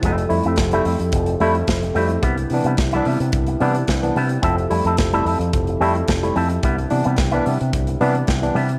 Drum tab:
HH |xxoxxxoxxxoxxxox|xxoxxxoxxxoxxxox|xxoxxxoxxxoxxxox|xxoxxxoxxxoxxxox|
SD |----o-------o---|----o-------o---|----o-------o---|----o-------o---|
BD |o---o---o---o---|o---o---o---o---|o---o---o---o---|o---o---o---o---|